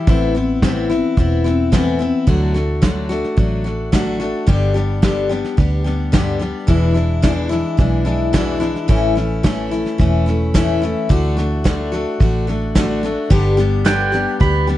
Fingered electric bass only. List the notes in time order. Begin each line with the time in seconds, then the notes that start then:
0.08 A1
1.17 E1
2.28 D2
3.38 A1
4.48 G1
5.58 D2
6.68 E1
7.79 B1
8.89 A1
10.00 E1
11.10 D2
12.21 A1
13.31 G1
14.41 D2